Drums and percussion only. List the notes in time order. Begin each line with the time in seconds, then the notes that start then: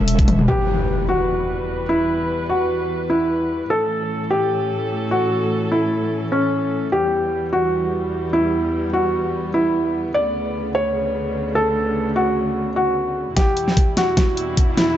0.08 closed hi-hat
0.19 kick, closed hi-hat
0.28 closed hi-hat, high tom
0.39 mid tom
13.37 kick, snare, closed hi-hat
13.57 closed hi-hat
13.68 snare
13.77 kick, closed hi-hat
13.97 snare, closed hi-hat
14.17 kick, snare, closed hi-hat
14.37 closed hi-hat
14.57 kick, closed hi-hat
14.77 snare, closed hi-hat